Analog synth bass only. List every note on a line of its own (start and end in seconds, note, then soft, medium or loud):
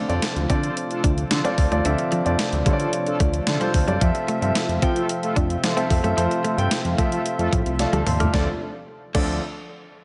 0.09 0.19 F2 medium
0.36 0.46 D2 loud
0.50 0.70 D3 loud
1.04 1.24 D2 medium
1.31 1.41 D3 loud
1.58 1.68 D2 loud
1.72 1.82 D#2 medium
1.85 1.95 D2 loud
2.26 2.36 F2 medium
2.53 2.63 D2 loud
2.66 2.86 D3 medium
3.20 3.40 D2 medium
3.47 3.57 D3 loud
3.74 3.84 D2 medium
3.88 3.98 F#2 medium
4.01 4.11 F2 loud
4.42 4.52 G2 medium
4.69 4.79 F2 loud
4.82 5.03 F3 medium
5.37 5.57 F2 medium
5.63 5.74 F3 loud
5.90 6.01 F2 medium
6.04 6.14 F#2 medium
6.17 6.27 F2 loud
6.58 6.68 G2 medium
6.85 6.95 F2 loud
6.98 7.19 F3 medium
7.39 7.49 F2 medium
7.53 7.63 A2 medium
7.66 7.86 C2 medium
7.93 8.03 D2 medium
8.06 8.27 D#2 loud
8.34 8.49 D2 loud
9.15 9.40 D2 loud